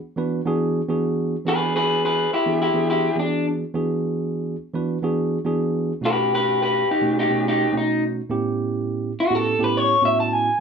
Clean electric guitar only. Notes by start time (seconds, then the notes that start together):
1.48 G#4 B4
1.76 G#4 B4
2.05 G#4 B4
2.33 E4 G4
2.62 E4 G4
2.90 E4 G4
3.19 D4
6.05 G4 B4
6.35 G4 B4
6.62 G4 B4
6.91 D#4 G4
7.19 D#4 G4
7.48 D#4 G4
7.77 D#4
9.20 F#4
9.35 A4
9.64 B4
9.77 C#5
10.05 E5
10.20 A5
10.33 G#5